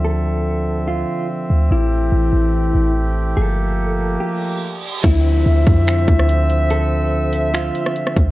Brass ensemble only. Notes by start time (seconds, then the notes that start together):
Already playing: D3 F3 C4 E5
1.71 E3 A3 G4
3.37 F3 A#3
5.04 D3 F3 C4 E5